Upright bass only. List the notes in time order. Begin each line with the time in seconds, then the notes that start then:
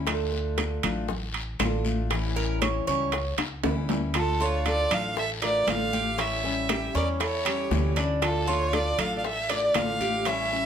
Already playing: D2
0.84 A1
1.60 A1
2.87 C#2
3.38 C#2
3.63 D2
4.91 A1
5.67 A1
6.95 E2
7.71 D2
8.99 A1
9.75 A1